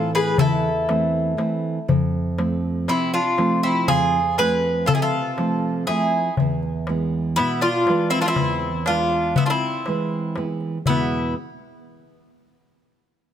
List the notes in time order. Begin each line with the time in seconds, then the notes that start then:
Already playing: A2 E3 A3 C4 F4 A4
0.15 G#4 B4
0.38 E2 E4 A4, darbuka dum
0.89 E3 A3 C4, darbuka tek
1.37 E3 A3 C4, darbuka tek
1.88 F2, darbuka dum
2.38 F3 A3 C4, darbuka tek
2.88 C3 C4 E4, darbuka tek
3.14 D4 F4
3.38 F3 A3 C4, darbuka tek
3.63 C4 E4
3.88 F2 F4 G#4, darbuka tek, darbuka dum
4.13 darbuka tek
4.38 F3 A3 C4 G#4 B4, darbuka tek
4.86 C3 F4 A4, darbuka dum
4.94 E4 G#4
5.02 F4 A4
5.38 F3 A3 C4, darbuka tek
5.87 F3 A3 C4 E4 G#4, darbuka tek
6.37 E2, darbuka dum
6.63 darbuka tek
6.87 E3 G#3 B3, darbuka tek
7.36 B2 B3 E4, darbuka tek
7.61 D4 F4
7.87 E3 G#3 B4, darbuka tek
8.10 C4 E4, darbuka tek
8.21 D4 F4
8.26 C4 E4
8.36 E2, darbuka tek, darbuka dum
8.61 darbuka tek
8.86 G#3 D4 F4 B4, darbuka tek
9.11 darbuka tek
9.36 B3 E4, darbuka dum
9.45 D4 F4
9.50 C4 E4
9.61 darbuka tek
9.86 E3 G#3 B4, darbuka tek
10.11 darbuka tek
10.36 E3 G#3 B3, darbuka tek
10.61 darbuka tek
10.86 E2 B2 E3 G#3 B3 E4, darbuka dum